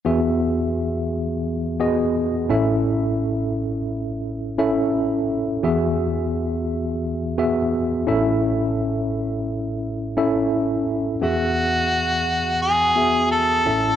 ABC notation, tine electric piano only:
X:1
M:4/4
L:1/8
Q:1/4=86
K:E
V:1 name="Tine electric piano"
[B,FGe]4 z [B,FGd]2 [CEAe]- | [CEAe]3 z2 [CEAe]3 | [B,FGe]4 z [B,FGe]2 [CEAe]- | [CEAe]3 z2 [CEAe]3 |
[B,FGe]4 z [B,FGe]2 [CEAe] |]
V:2 name="Tine electric piano" clef=bass
[E,,E,]6- [E,,E,] [A,,,A,,]- | [A,,,A,,]6- [A,,,A,,] z | [E,,E,]6- [E,,E,] [A,,,A,,]- | [A,,,A,,]6- [A,,,A,,] z |
[E,,E,]6- [E,,E,] [A,,,A,,] |]